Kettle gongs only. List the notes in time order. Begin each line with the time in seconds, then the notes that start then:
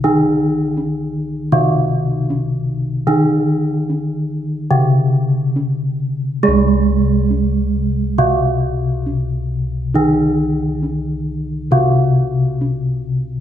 Already playing: D#3
0.04 D#4
0.77 C#4
1.52 D#3
2.30 C#4
3.08 D#4
3.90 C#4
4.71 C3
5.56 C#4
6.43 G#4
6.48 C2
7.31 C#4
9.06 C#4
9.94 D#4
10.83 C#4
11.71 C3
12.61 C#4